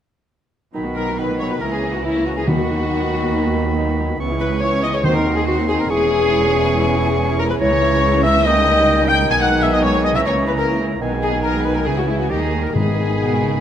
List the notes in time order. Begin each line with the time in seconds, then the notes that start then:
0.74 B1 B2 D#3 F#3 B3 D#4 B5
0.85 B3 F#4
0.95 F#3 D#4 A#4 A#5
1.08 B3 F#4
1.17 D#3 F#3 B3 D#4 B4 B5
1.29 B3 F#4
1.38 F#3 D#4 C#5 C#6
1.49 B3 F#4 B4 B5
1.60 C#2 C#3 E3 A#3 C#4 E4 A#4 A#5
1.71 A#3 C#4 G#4 G#5
1.84 C#4 E4
1.92 A#3 C#4 F#4 F#5
2.03 E3 A#3 C#4 E4 E5 A#5
2.17 A#3 C#4
2.25 C#4 E4 F#4 F#5
2.36 A#3 C#4 G#4 G#5
2.45 D#2 D#3 B3 D#4 F#4 F#5 B5
2.49 F#3
2.59 B3 F#4
2.69 F#3 D#4
2.80 B3 F#4
2.91 F#3 D#4
3.02 B3 F#4
3.13 F#3 D#4
3.23 B3 F#4
3.35 F#3 D#4
3.45 B3 F#4
3.55 F#3 D#4
3.66 B3 F#4
3.76 F#3 D#4
3.88 B3 F#4
3.98 F#3 D#4
4.09 B3 F#4
4.18 C#2 E3 B3 C#4 E4 C#6
4.30 C#4 G#4
4.39 B3 E4 B4 B5
4.52 C#4 G#4
4.60 E3 B3 C#4 E4 C#5 C#6
4.73 C#4 G#4
4.83 B3 E4 D#5 D#6
4.93 C#4 G#4 C#5 C#6
5.04 D#2 D#3 C4 D#4 F#4 C5 C6
5.14 C4 D#4 A#4 A#5
5.26 D#4 F#4
5.35 C4 D#4 G#4 G#5
5.46 D#3 C4 D#4 F#4 F#5 C6
5.58 C4 D#4
5.68 D#4 F#4 G#4 G#5
5.79 C4 D#4 A#4 A#5
5.89 E1 E2 E3 G#3 C#4 E4 G#4 G#5 C#6
6.01 C#4 G#4
6.11 G#3 E4
6.22 C#4 G#4
6.32 G#3 E4
6.44 C#4 G#4
6.54 G#3 E4
6.65 C#4 G#4
6.76 G#3 E4
6.86 C#4 G#4
6.97 G#3 E4
7.07 C#4 G#4
7.19 G#3 E4
7.29 C#4 G#4
7.39 G#3 E4 A#4 A#5
7.50 C#4 G#4 B4 B5
7.60 C#2 C#3 E3 G#3 E4 C#5 A#5 C#6
7.71 A#3 C#4
7.81 G#3 E4
7.93 A#3 C#4
8.03 G#3 E4
8.14 A#3 C#4
8.23 G#3 E4 E5 E6
8.36 A#3 C#4
8.45 D#3 G3 A#3 D#4 D#5 G5 D#6
8.57 G3 C#4
8.68 A#3 D#4
8.78 G3 C#4
8.89 A#3 D#4
8.99 G3 C#4
9.08 A#3 D#4 G5 G6
9.20 G3 C#4
9.30 B1 B2 G#3 B3 D#4 G#5 G#6
9.41 G#3 B3 F#5 F#6
9.52 B3 D#4
9.62 G#3 B3 E5 E6
9.73 G#3 B3 D#4 D#5 D#6
9.82 G#3 B3 C#5 C#6
9.95 B3 D#4
10.04 G#3 B3 D#5 D#6
10.14 C#2 C#3 E3 A#3 C#4 E4 E5 A#5 E6
10.25 A#3 C#4 C#5 C#6
10.38 C#4 E4
10.47 A#3 C#4 B4 B5
10.57 A#3 C#4 E4 A#4 A#5
10.70 A#3 C#4
10.81 C#4 E4
10.92 A#3 C#4
11.00 B1 B2 D#3 G#3 B3 D#4 G#5
11.13 G#3 B3
11.22 B3 D#4 G#4 G#5
11.33 G#3 B3
11.42 B3 D#4 A#4 A#5
11.55 G#3 B3
11.64 B3 D#4 B4 B5
11.75 G#3 B3 A#4 A#5
11.85 C#2 C#3 E3 G#3 E4 G#4 G#5
11.97 C#4 F#4 G#4 F#5
12.07 G#3 E4 E5
12.18 C#4 F#4 G#4 F#5
12.29 D#2 D#3 G3 A#3 D#4 G4 G5 A#5
12.40 A#3 G4 G#4 G#5
12.54 G3 D#4
12.62 A#3 G4 A#4 A#5
12.74 G#1 G#2 G#3 B3 D#4 G#4 G#5 B5
12.87 B3 G#4
12.97 G#3 D#4
13.09 B3 G#4
13.20 B2 G#3 D#4
13.32 B3 G#4
13.42 C#3 G#3 D#4
13.54 B3 G#4